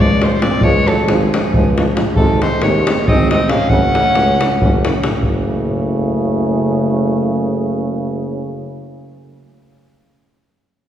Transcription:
0.00 0.33 C#2 medium
0.00 0.24 G#3 loud
0.00 0.25 D5 loud
0.22 0.31 F3 medium
0.22 0.30 G#3 medium
0.22 0.26 G#3 medium
0.22 0.27 C5 medium
0.22 davul high medium
0.27 0.31 G#3 medium
0.27 0.32 C5 medium
0.32 0.41 G#3 medium
0.32 0.42 C5 medium
0.32 davul high soft
0.42 0.51 F3 medium
0.42 0.50 G#3 medium
0.42 0.62 C4 medium
0.42 0.64 D5 loud
0.42 davul high medium
0.51 davul high soft
0.61 0.87 C#2 loud
0.61 0.72 F3 medium
0.61 0.89 G#3 loud
0.61 0.72 G#3 medium
0.61 0.89 C#5 loud
0.61 davul low loud
0.86 0.95 F3 medium
0.86 1.08 F#3 medium
0.86 0.97 G#3 medium
0.86 1.11 A4 medium
0.86 davul high medium
0.98 davul high soft
1.07 1.33 G#1 loud
1.07 1.96 F3 medium
1.07 1.18 F3 medium
1.07 1.19 G#3 medium
1.07 1.97 G#4 medium
1.07 davul high medium
1.21 davul high soft
1.34 1.43 F3 medium
1.34 1.42 G#3 medium
1.34 davul high medium
1.44 davul high soft
1.54 1.89 C#2 loud
1.54 1.64 F3 medium
1.54 1.63 G#3 medium
1.54 davul low loud
1.78 1.86 F3 medium
1.78 1.86 G#3 medium
1.78 davul high medium
1.87 davul high soft
1.96 2.04 F3 medium
1.96 2.04 G#3 medium
1.96 davul high medium
2.07 davul high soft
2.16 2.42 G#1 loud
2.16 2.26 C3 medium
2.16 2.41 D#3 medium
2.16 2.27 G#3 medium
2.16 2.40 A4 loud
2.16 davul low loud
2.41 2.49 C3 medium
2.41 2.50 G#3 medium
2.41 2.61 G#3 medium
2.41 2.61 C5 medium
2.41 davul high medium
2.52 davul high soft
2.62 2.87 D#2 loud
2.62 2.73 C3 medium
2.62 2.73 G#3 medium
2.62 3.08 G#3 medium
2.62 3.09 C#5 loud
2.62 davul high medium
2.75 davul high soft
2.87 2.96 C3 medium
2.87 2.96 G#3 medium
2.87 davul high medium
2.98 davul high soft
3.07 3.42 G#1 medium
3.07 3.18 C3 medium
3.07 3.18 G#3 medium
3.07 3.30 C4 loud
3.07 3.30 D#5 loud
3.07 davul low loud
3.31 3.40 C3 medium
3.31 3.40 G#3 medium
3.31 3.52 C4 medium
3.31 3.51 D#5 medium
3.31 davul high medium
3.40 davul high soft
3.49 3.58 C3 medium
3.49 3.58 G#3 medium
3.49 3.69 C#4 loud
3.49 3.70 F5 loud
3.49 davul high medium
3.60 davul high soft
3.69 3.95 F#1 loud
3.69 3.81 C#3 medium
3.69 3.81 A3 medium
3.69 4.84 C#4 loud
3.69 4.84 F#5 loud
3.69 davul low loud
3.95 4.03 C#3 medium
3.95 4.03 A3 medium
3.95 davul high medium
4.06 davul high soft
4.14 4.42 C#2 loud
4.14 4.26 C#3 medium
4.14 4.25 A3 medium
4.14 davul high medium
4.28 davul high soft
4.41 4.50 C#3 medium
4.41 4.49 A3 medium
4.41 davul high medium
4.52 davul high soft
4.60 4.95 F#1 loud
4.60 4.70 C#3 medium
4.60 4.71 A3 medium
4.60 davul low loud
4.83 4.91 C#3 medium
4.83 4.92 A3 medium
4.83 davul high medium
4.94 davul high soft
5.03 5.11 C#3 medium
5.03 5.12 A3 medium
5.03 davul high medium
5.14 davul high soft
5.22 8.61 F#1 loud
5.22 8.60 C#3 medium
5.22 8.62 A3 medium
5.22 davul low medium

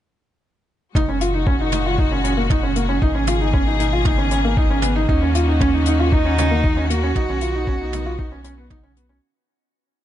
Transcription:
0.95 2.99 F#1 medium
0.95 3.00 A#2 medium
0.95 3.00 G#3 medium
0.95 1.02 D#4 loud
0.95 3.00 F#4 medium
0.95 kick medium
0.95 mid tom medium
1.09 1.15 C#4 medium
1.21 1.28 F4 medium
1.21 closed hi-hat medium
1.34 1.41 D#4 medium
1.47 1.54 C#4 medium
1.47 kick loud
1.60 1.67 D#4 medium
1.72 1.80 D#4 medium
1.72 closed hi-hat medium
1.72 mid tom medium
1.86 1.93 F4 medium
1.98 2.06 D#4 medium
1.98 kick loud
2.11 2.18 C#4 medium
2.24 2.31 C#4 medium
2.24 closed hi-hat medium
2.37 2.44 A#3 medium
2.50 2.57 D#4 medium
2.50 kick loud
2.50 mid tom medium
2.63 2.70 C#4 medium
2.76 2.83 A#3 medium
2.76 closed hi-hat medium
2.89 2.96 C#4 medium
3.01 5.06 G#1 medium
3.01 5.06 B2 medium
3.01 7.11 A#3 medium
3.01 3.09 D#4 loud
3.01 5.06 G#4 medium
3.01 kick loud
3.15 3.22 C#4 medium
3.27 3.35 F4 medium
3.27 closed hi-hat medium
3.27 mid tom medium
3.40 3.47 D#4 medium
3.54 3.61 C#4 medium
3.54 kick loud
3.67 3.74 D#4 medium
3.79 3.86 D#4 medium
3.79 closed hi-hat medium
3.93 4.00 F4 medium
4.05 4.13 D#4 medium
4.05 kick loud
4.05 mid tom medium
4.18 4.25 C#4 medium
4.31 4.38 C#4 medium
4.31 closed hi-hat medium
4.45 4.51 A#3 medium
4.57 4.64 D#4 medium
4.57 kick loud
4.70 4.77 C#4 medium
4.82 4.90 B3 medium
4.82 closed hi-hat medium
4.82 mid tom medium
4.96 5.03 D#4 medium
5.09 7.13 D#2 medium
5.09 9.19 D#3 medium
5.09 6.14 C#4 loud
5.09 5.16 D#4 loud
5.09 9.19 F#4 medium
5.09 kick loud
5.22 5.29 C#4 medium
5.35 5.42 F4 medium
5.35 closed hi-hat medium
5.48 5.55 D#4 medium
5.61 5.68 C#4 medium
5.61 kick loud
5.61 mid tom medium
5.74 5.80 D#4 medium
5.86 5.94 D#4 medium
5.86 closed hi-hat medium
6.00 6.06 F4 medium
6.12 6.91 D#4 loud
6.12 6.19 D#4 medium
6.12 kick loud
6.25 6.32 C#4 medium
6.38 6.45 C#4 medium
6.38 closed hi-hat medium
6.38 mid tom medium
6.51 6.58 A#3 medium
6.64 6.71 D#4 medium
6.64 kick loud
6.77 6.84 C#4 medium
6.90 6.97 A#3 medium
6.90 8.71 F#4 loud
6.90 closed hi-hat medium
7.03 7.10 C#4 medium
7.15 9.20 B1 medium
7.15 9.21 B3 medium
7.15 7.23 D#4 loud
7.15 kick loud
7.15 mid tom medium
7.29 7.36 C#4 medium
7.41 7.49 F4 medium
7.41 closed hi-hat medium
7.55 7.62 D#4 medium
7.67 7.75 C#4 medium
7.67 kick loud
7.80 7.87 D#4 medium
7.93 8.00 D#4 medium
7.93 closed hi-hat medium
7.93 mid tom medium
8.06 8.13 F4 medium
8.19 8.26 D#4 medium
8.19 kick loud
8.32 8.39 C#4 medium
8.44 8.51 C#4 medium
8.44 closed hi-hat medium
8.58 8.65 B3 medium
8.70 8.77 D#4 medium
8.70 kick loud
8.70 mid tom medium
8.83 8.90 C#4 medium
8.97 9.04 B3 medium
8.97 closed hi-hat medium
9.09 9.16 C#4 medium

